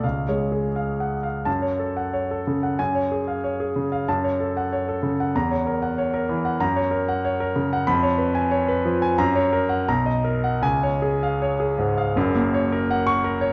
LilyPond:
<<
  \new Staff \with { instrumentName = "Grand piano" } { \time 2/4 \key fis \minor \tempo 4 = 91 << { r4 \tuplet 3/2 { r8 fis''8 r8 } | a''8 r4. | gis''8 r4. | a''8 r4. |
ais''8 r4. | \key fis \major ais''8 r4. | b''8 r4. | ais''8 r8 ais''8 r8 |
gis''8 r4. | r4 r16 cis'''8 r16 | } \\ { \tuplet 3/2 { eis''8 cis''8 gis'8 eis''4 eis''8 } | r16 cis''16 a'16 fis''16 cis''16 a'16 cis16 fis''16 | r16 cis''16 gis'16 eis''16 cis''16 gis'16 cis16 eis''16 | r16 cis''16 a'16 fis''16 cis''16 a'16 cis16 fis''16 |
r16 cis''16 ais'16 fis''16 cis''16 ais'16 e16 fis''16 | r16 cis''16 ais'16 fis''16 cis''16 ais'16 cis16 fis''16 | r16 cis''16 b'16 gis''16 cis''16 b'16 eis16 gis''16 | r16 cis''16 ais'16 fis''16 r16 dis''16 ais'16 fis''16 |
r16 cis''16 gis'16 eis''16 cis''16 gis'16 gis,16 eis''16 | r2 | } >> }
  \new Staff \with { instrumentName = "Grand piano" } { \clef bass \time 2/4 \key fis \minor \tuplet 3/2 { cis,8 gis4 } r4 | fis,2 | fis,2 | fis,2 |
e,2 | \key fis \major fis,2 | eis,2 | fis,4 b,,4 |
cis,2 | <fis,, fis,>16 ais16 cis''16 ais'16 fis''8 ais'16 cis''16 | }
>>